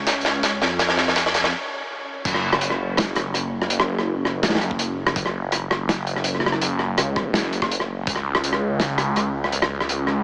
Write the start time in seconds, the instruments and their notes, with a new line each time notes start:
Already playing: detuned saw bass C#2, synth texture C#4 C#5
0.07 kick, snare, closed hi-hat
0.21 snare, closed hi-hat
0.43 kick, snare, closed hi-hat
0.62 detuned saw bass F2, snare
0.79 kick, snare, closed hi-hat
0.89 snare
0.97 snare
1.08 snare
1.16 kick, snare, closed hi-hat
1.26 snare
1.34 detuned saw bass F2, snare, closed hi-hat
1.44 snare
2.25 detuned saw bass F#1, kick, closed hi-hat, crash
2.34 cross-stick
2.53 cross-stick
2.61 detuned saw bass F#1, closed hi-hat
2.70 cross-stick
2.97 cross-stick, snare, closed hi-hat
3.16 cross-stick, closed hi-hat
3.34 cross-stick, closed hi-hat
3.62 cross-stick
3.70 detuned saw bass F#1, closed hi-hat
3.80 cross-stick
3.99 cross-stick
4.07 detuned saw bass F#1
4.25 cross-stick
4.43 cross-stick, snare, closed hi-hat
4.49 snare
4.55 snare
4.61 detuned saw bass F#1, cross-stick, closed hi-hat
4.71 kick
4.79 closed hi-hat
5.07 cross-stick
5.16 detuned saw bass F#1, kick, closed hi-hat
5.26 cross-stick
5.52 detuned saw bass F#1, cross-stick, closed hi-hat
5.71 cross-stick
5.89 cross-stick, snare, closed hi-hat
6.07 closed hi-hat
6.16 cross-stick
6.24 closed hi-hat
6.35 cross-stick
6.40 cross-stick
6.46 cross-stick
6.52 cross-stick
6.62 detuned saw bass F#1, closed hi-hat
6.79 cross-stick
6.98 detuned saw bass C#2, cross-stick, closed hi-hat
7.16 kick, cross-stick
7.34 detuned saw bass F#1, snare, closed hi-hat
7.44 cross-stick
7.53 closed hi-hat
7.62 kick, cross-stick
7.71 closed hi-hat
7.80 cross-stick
8.07 detuned saw bass C#2, kick, closed hi-hat
8.16 cross-stick
8.35 cross-stick
8.44 detuned saw bass C#2, closed hi-hat
8.53 cross-stick
8.80 cross-stick, snare, closed hi-hat
8.98 cross-stick, closed hi-hat
9.16 cross-stick, closed hi-hat
9.44 cross-stick
9.52 detuned saw bass C#2, closed hi-hat
9.62 cross-stick
9.80 cross-stick
9.89 detuned saw bass C#2, closed hi-hat
10.07 cross-stick